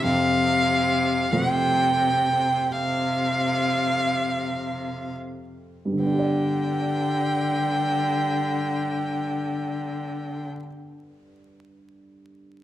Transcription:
0.03 F2 C3 F5
1.30 B2 F3 A3 C4 F#5
1.50 C3 G5
2.71 C3 F5
5.85 G2
5.92 D3
5.99 D3 B3 G5
6.06 D4
6.13 G4
6.19 D5

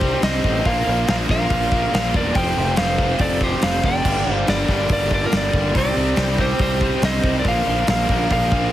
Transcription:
Already playing: C2 C3 G3 C4 G4 C5
0.01 C3 G3 C4 D#4, kick
0.22 C2 C3 G3 C4 D#4 C5 D#5, snare, open hi-hat
0.44 A1 C3 G3 C4 D#4, kick
0.65 A#1 A#2 F3 A#3 D4 F4 A#4 C5 F5, kick, open hi-hat
0.87 A#1 A#2 F3 A#3 D4
1.08 A#1 A#2 F3 A#3 D4 F5, snare, open hi-hat
1.12 A#4
1.28 A#1 A#2 F3 A#3 D4 A#4 F5, kick, snare
1.32 A#2
1.50 A#1 A#2 F3 A#3 D4, kick, open hi-hat
1.71 A#2 F3 A#3 D4, kick
1.93 A#1 A#2 F3 A#3 D4 A#4 F5, snare, open hi-hat
2.12 E1 A#2 F3 A#3 D4, kick
2.16 A#4 D5
2.33 F1 F2 C3 F3 A3 C4 G4 G5, kick, open hi-hat
2.38 C5
2.54 F1 F2 C3 F3 A3 C4
2.75 F1 F2 C3 F3 A3 C4 F5, snare, open hi-hat
2.81 C5
2.97 F2 C3 F3 A3 C4, kick
3.02 F2
3.18 F1 F2 C3 F3 A3 C4 D5, kick, open hi-hat
3.23 A4
3.40 F2 C3 F3 A3 C4 C5, kick
3.44 G4
3.61 F1 F2 C3 F3 A3 C4 F5, snare, open hi-hat
3.66 C5
3.83 F1 F2 C3 F3 A3 C4 D5 G5, kick
4.04 G1 G2 D3 G3 A#3 D4 A5, kick, crash
4.26 G1 G2 D3 G3 A#3 D4
4.31 C5 F5
4.47 G1 G2 D3 G3 A#3 D4 A#4 D5, snare, open hi-hat
4.67 G1 G2 D3 G3 A#3 D4, kick, snare
4.71 G2
4.89 G1 G2 D3 G3 A#3 D4 A#4 D5, kick, open hi-hat
5.10 G2 D3 G3 A#3 D4 A#4, kick
5.15 D5
5.24 F4 A#4
5.31 G1 G2 D3 G3 A#3 D4 A#4, snare, open hi-hat
5.37 D5
5.53 G1 G2 D3 G3 A#3 D4, kick
5.73 C2 C3 G3 C4 D#4 G4 C5, kick, open hi-hat
5.78 G4 D5
5.96 C2 C3 G3 C4 D#4
6.16 C2 C3 G3 C4 D#4, snare, open hi-hat
6.38 C3 G3 C4 D#4 G4 C5, kick
6.59 C2 C3 G3 C4 D#4 G4 C5, kick, open hi-hat
6.81 C3 G3 C4 D#4, kick
7.02 C2 C3 G3 C4 D#4 C5 D#5, snare, open hi-hat
7.23 C2 C3 G3 C4 D#4, kick
7.38 A#4 D5
7.42 A#1 A#2 D3 A#3 F4 A#4 C5, kick, open hi-hat
7.47 F3 A#3 D4 F5
7.66 A#1 A#2 D3 F3 A#3 D4
7.87 A#1 A#2 D3 F3 A#3 D4 A#4 F5, snare, open hi-hat
8.09 A#1 A#2 D3 F3 A#3 D4, kick
8.30 A#1 A#2 D3 F3 A#3 D4 A#4 F5, kick, open hi-hat
8.52 A#2 D3 F3 A#3 D4, kick

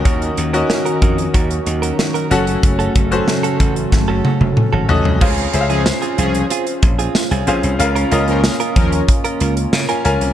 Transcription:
Already playing: D#3 C#4 D#4 F#4 A#4 D#5
0.05 D#2 C#4 F#4 A#4, kick, closed hi-hat
0.22 closed hi-hat
0.37 D#2, muted clean electric guitar stroke, closed hi-hat
0.53 C#4 F#4 A#4 D#5, closed hi-hat
0.70 muted clean electric guitar stroke, snare
0.85 C#4 F#4 A#4, closed hi-hat
1.02 F2 C#4 F#4 A#4, kick, closed hi-hat
1.18 muted clean electric guitar stroke, closed hi-hat
1.34 D#2 C#4 F#4 A#4, kick, closed hi-hat
1.50 muted clean electric guitar stroke, closed hi-hat
1.66 D#2, muted clean electric guitar stroke, closed hi-hat
1.82 C#4 F#4 A#4, closed hi-hat
1.99 muted clean electric guitar stroke, snare
2.14 C#4 F#4 A#4, closed hi-hat
2.30 F#1 C#3 F#3 A3 C#4 F#4 A4 F#5, closed hi-hat
2.47 muted clean electric guitar stroke, closed hi-hat
2.63 F#1, muted clean electric guitar stroke, kick, closed hi-hat
2.79 C#4 F#4 A4, closed hi-hat
2.95 F#1 C#4 F#4 A4, kick, closed hi-hat
3.11 C#4 F#4 A4 C5, muted clean electric guitar stroke, closed hi-hat
3.27 muted clean electric guitar stroke, snare
3.43 C#4 F#4 A4, closed hi-hat
3.59 A1 C#4 F#4 A4, kick, closed hi-hat
3.76 muted clean electric guitar stroke, closed hi-hat
3.92 G#1, muted clean electric guitar stroke, kick, snare
4.08 F#1 C#4 F#4 A4
4.24 C#4 F#4 A4, high tom
4.41 F#1, muted clean electric guitar stroke, high tom
4.57 muted clean electric guitar stroke, mid tom
4.73 G#1 C#4 F#4 A4
4.89 A1 C#4 F#4 A4 D#5, floor tom
5.05 C2, muted clean electric guitar stroke, floor tom
5.21 C#2 C#3 C4 C#4 F4 G#4 C5 F5, kick, crash
5.38 closed hi-hat
5.53 C#2 C#4 G#4 C5 E5, closed hi-hat
5.61 F5
5.70 F3 C4 C#4 F4 G#4, closed hi-hat
5.86 muted clean electric guitar stroke, snare, tambourine
6.02 C4 F4 G#4, closed hi-hat
6.18 C2 F3 C4 C#4 F4 G#4, closed hi-hat
6.34 muted clean electric guitar stroke, closed hi-hat
6.50 C4 F4 G#4, closed hi-hat
6.67 muted clean electric guitar stroke, closed hi-hat
6.83 A#1, muted clean electric guitar stroke, kick, closed hi-hat
6.99 C4 F4 G#4, closed hi-hat
7.15 muted clean electric guitar stroke, snare, tambourine
7.31 C2 C4 F4 G#4, closed hi-hat
7.47 A#1 C4 C#4 F4 G#4 C5 F5, closed hi-hat
7.63 C2, muted clean electric guitar stroke, closed hi-hat
7.79 C#2 C#3 A#3 C#4 F4 A#4 F5, muted clean electric guitar stroke, closed hi-hat
7.96 C#4 F4 A#4, closed hi-hat
8.11 C#2 C#4 F4 A#4 D#5, closed hi-hat
8.28 F3 C#4 A#4, muted clean electric guitar stroke, closed hi-hat
8.44 muted clean electric guitar stroke, snare, tambourine
8.60 C#4 F4 A#4, closed hi-hat
8.76 D#2 F3 C#4 F4 A#4, kick, closed hi-hat
8.92 muted clean electric guitar stroke, closed hi-hat
9.08 muted clean electric guitar stroke, kick, closed hi-hat
9.24 C#4 F4 A#4, closed hi-hat
9.40 C#2 C#4 F4 A#4, closed hi-hat
9.57 muted clean electric guitar stroke, closed hi-hat
9.73 C#3 F5, muted clean electric guitar stroke, snare, tambourine
9.89 C#4 F4 A#4 G#5, closed hi-hat
10.05 C#2 C#4 F4 A#4 G#5 A#5, closed hi-hat
10.21 C2, muted clean electric guitar stroke, closed hi-hat

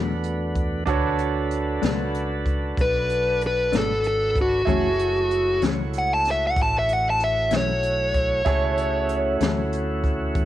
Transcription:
Already playing: E2 B2 F#3 A3 D4 F#4 A4 B4 C#5
0.24 closed hi-hat
0.55 kick, closed hi-hat
0.85 D2 D4 F#4 A4 B4 C#5, kick, closed hi-hat
1.19 closed hi-hat
1.51 closed hi-hat
1.82 C#2 B2 F#3 A3 D4, snare, closed hi-hat
2.14 closed hi-hat
2.46 kick, closed hi-hat
2.77 B1 B4, kick, closed hi-hat
3.09 closed hi-hat
3.41 closed hi-hat
3.47 B4
3.72 G#1 B2 F#3 A3 D4, snare, closed hi-hat
3.77 A4
4.04 A4, closed hi-hat
4.36 kick, closed hi-hat
4.41 F#4
4.65 F#1 F#2 E3 A3 C#4 E4 F#4 G#4 A4 C#5, kick, closed hi-hat
4.99 closed hi-hat
5.31 closed hi-hat
5.62 C#2 F#2 E3 A3 C#4, snare, closed hi-hat
5.93 closed hi-hat
5.99 F#5
6.14 A5
6.25 snare, closed hi-hat
6.31 E5
6.47 F#5
6.57 A1, kick, closed hi-hat
6.63 A5
6.79 E5
6.89 closed hi-hat
6.93 F#5
7.10 A5
7.20 closed hi-hat
7.24 E5
7.51 B1 F#2 E3 A3 C#4, snare, closed hi-hat
7.57 C#5
7.83 closed hi-hat
8.14 kick, closed hi-hat
8.45 C#2 A3 C#4 E4 F#4 G#4 A4 C#5, kick, closed hi-hat
8.77 closed hi-hat
9.09 closed hi-hat
9.40 D2 F#2 E3 A3 C#4, snare, closed hi-hat
9.73 closed hi-hat
10.04 kick, closed hi-hat
10.35 E2, kick, closed hi-hat

